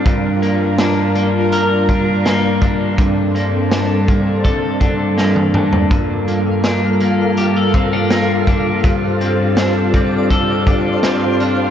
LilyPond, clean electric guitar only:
\new Staff \with { instrumentName = "Clean electric guitar" } { \time 4/4 \key g \minor \tempo 4 = 82 g,8 bes8 d'8 bes8 bes'8 d'8 bes8 d'8 | g,8 bes8 d'8 bes8 a'8 d'8 bes8 d'8 | g,8 bes8 d'8 bes8 g'16 a'16 c'16 d'16 bes8 d'8 | g,8 c'8 d'8 c'8 a'8 d'8 c'8 d'8 | }